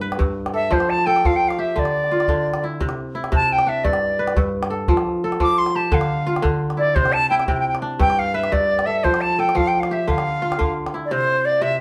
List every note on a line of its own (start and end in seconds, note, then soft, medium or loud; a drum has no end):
0.00 0.18 G2 medium
0.00 1.18 D4 medium
0.00 0.53 E4 medium
0.00 1.24 B4 medium
0.12 calabash click medium
0.19 0.77 G2 medium
0.19 calabash thump medium
0.46 calabash click medium
0.54 1.06 A4 soft
0.54 0.74 E5 medium
0.71 1.24 F3 medium
0.71 0.91 C5 medium
0.71 calabash thump medium
0.80 calabash click soft
0.90 1.08 A5 loud
0.98 calabash click soft
1.06 2.38 A4 medium
1.06 1.27 G5 medium
1.06 calabash click soft
1.16 calabash click soft
1.25 1.81 F3 medium
1.25 1.37 F5 medium
1.25 calabash thump medium
1.33 1.49 G5 medium
1.33 calabash click soft
1.48 1.61 F5 medium
1.48 calabash click soft
1.58 3.00 G4 medium
1.58 1.80 E5 medium
1.76 2.27 D3 medium
1.76 2.64 D5 medium
1.76 calabash thump medium
1.85 calabash click soft
2.04 calabash click soft
2.11 2.70 F4 medium
2.11 calabash click soft
2.20 calabash click soft
2.28 2.86 D3 medium
2.28 calabash thump medium
2.54 calabash click soft
2.64 3.15 E4 medium
2.80 3.31 C3 medium
2.80 calabash thump medium
2.89 calabash click soft
3.15 4.72 E4 medium
3.24 calabash click soft
3.32 3.90 C3 medium
3.32 3.54 A5 loud
3.32 calabash thump medium
3.52 3.70 G5 medium
3.59 calabash click soft
3.67 5.34 D4 medium
3.67 3.85 E5 medium
3.84 4.35 G2 medium
3.84 4.36 D5 medium
3.84 calabash thump medium
3.93 calabash click soft
4.19 5.42 B4 medium
4.28 calabash click soft
4.36 4.94 G2 medium
4.36 calabash thump medium
4.63 calabash click medium
4.70 5.24 A4 medium
4.88 5.39 F3 medium
4.88 calabash thump medium
4.97 calabash click soft
5.24 6.56 A4 medium
5.32 calabash click soft
5.40 5.98 F3 medium
5.40 5.60 D6 loud
5.40 calabash thump medium
5.58 5.77 C6 medium
5.66 calabash click soft
5.75 7.16 G4 medium
5.75 5.95 A5 medium
5.92 6.41 D3 medium
5.92 6.45 F5 medium
5.92 calabash thump medium
6.01 calabash click medium
6.27 6.83 F4 medium
6.36 calabash click soft
6.42 7.02 D3 medium
6.42 calabash thump medium
6.70 calabash click soft
6.77 7.30 E4 medium
6.77 6.96 D5 medium
6.95 7.47 C3 medium
6.95 7.14 C5 loud
6.95 calabash thump medium
7.06 calabash click soft
7.13 7.29 A5 loud
7.30 8.87 E4 medium
7.30 7.37 G5 medium
7.38 7.46 G5 medium
7.38 calabash click soft
7.46 8.06 C3 medium
7.46 7.53 G5 medium
7.46 calabash thump medium
7.54 7.58 G5 medium
7.59 7.67 G5 medium
7.68 7.75 G5 medium
7.75 calabash click soft
7.82 9.50 D4 medium
7.99 8.51 G2 medium
7.99 8.20 G5 loud
7.99 calabash thump medium
8.10 calabash click medium
8.19 8.36 F5 medium
8.34 9.57 B4 medium
8.34 8.54 E5 medium
8.44 calabash click soft
8.52 9.09 G2 medium
8.52 8.87 D5 medium
8.52 calabash thump medium
8.79 calabash click medium
8.86 9.38 A4 medium
8.86 9.05 E5 medium
9.04 9.54 F3 medium
9.04 9.22 C5 medium
9.04 calabash thump medium
9.14 calabash click medium
9.21 9.41 A5 medium
9.39 10.70 A4 medium
9.39 9.58 G5 medium
9.39 calabash click soft
9.49 calabash click soft
9.55 10.13 F3 medium
9.55 9.69 F5 medium
9.55 calabash thump medium
9.67 9.81 G5 medium
9.67 calabash click soft
9.74 calabash click soft
9.80 9.94 F5 medium
9.80 calabash click soft
9.91 11.32 G4 medium
9.91 10.09 E5 medium
10.08 10.58 D3 medium
10.08 10.74 F5 medium
10.08 calabash thump medium
10.18 calabash click medium
10.42 11.00 F4 medium
10.52 calabash click medium
10.59 11.17 D3 medium
10.59 calabash thump medium
10.86 calabash click soft
10.94 11.81 E4 medium
10.94 calabash click soft
11.05 11.13 D5 medium
11.11 11.60 C3 medium
11.11 11.46 C5 medium
11.45 11.63 D5 medium
11.61 11.81 C3 medium
11.61 11.79 E5 medium